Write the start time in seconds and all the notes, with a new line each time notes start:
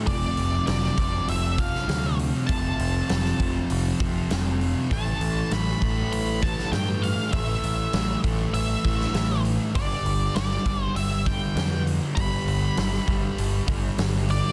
Already playing: A3
0.07 F1 F2 C3 F3 D5, kick, open hi-hat
0.37 F1, open hi-hat
0.67 F1 F2 C3 F3 D5, snare, open hi-hat
0.83 snare
0.97 F1 C3 F3, kick, open hi-hat
1.28 F1 E5, open hi-hat
1.58 C3 F3 F5, kick, open hi-hat
1.75 snare
1.88 D2 F2 C3 F3, snare, open hi-hat
2.19 open hi-hat
2.47 F1 F2 C3 F3 A5, kick, open hi-hat
2.79 F1, open hi-hat
3.08 F1 F2 C3 F3, snare, open hi-hat
3.25 snare
3.40 F1 C3 F3, kick, open hi-hat
3.70 F1, open hi-hat
4.00 F1 C3 F3, kick, open hi-hat
4.29 F1 F2 C3 F3, snare, open hi-hat
4.61 open hi-hat
4.89 A1 A2 E3 A3 A5, kick, open hi-hat
5.21 A1, open hi-hat
5.50 A1 A2 E3 A3 B5, snare, open hi-hat
5.68 snare
5.81 A1 E3 A3, kick, open hi-hat
6.12 A1 B5, open hi-hat
6.42 E3 A3 A5, kick, open hi-hat
6.59 snare
6.72 G2 A2 E3 A3 G5, snare, open hi-hat
7.02 F5, open hi-hat
7.32 A1 A2 E3 A3 E5, kick, open hi-hat
7.63 A1, open hi-hat
7.93 A1 A2 E3 A3, snare, open hi-hat
8.24 A1 E3 A3, kick, open hi-hat
8.54 A1 E5, open hi-hat
8.84 A1 E3 A3, kick, open hi-hat
9.01 snare
9.14 A1 A2 E3 A3, snare, open hi-hat
9.45 open hi-hat
9.74 G1 G2 D3 G3 D5, kick, open hi-hat
10.05 G1, open hi-hat
10.35 G1 G2 D3 G3 D5, snare, open hi-hat
10.51 snare
10.65 G1 D3 G3, kick, open hi-hat
10.84 C5
10.95 G1 E5, open hi-hat
11.26 D3 G3 G5, kick, open hi-hat
11.56 F2 G2 D3 G3, snare, open hi-hat
11.87 open hi-hat
12.15 G1 G2 D3 G3 B5, kick, open hi-hat
12.47 G1, open hi-hat
12.76 G1 G2 D3 G3, snare, open hi-hat
12.94 snare
13.06 G1 D3 G3, kick, open hi-hat
13.38 G1, open hi-hat
13.67 G1 D3 G3, kick, open hi-hat
13.97 G1 G2 D3 G3, snare, open hi-hat
14.29 D5, open hi-hat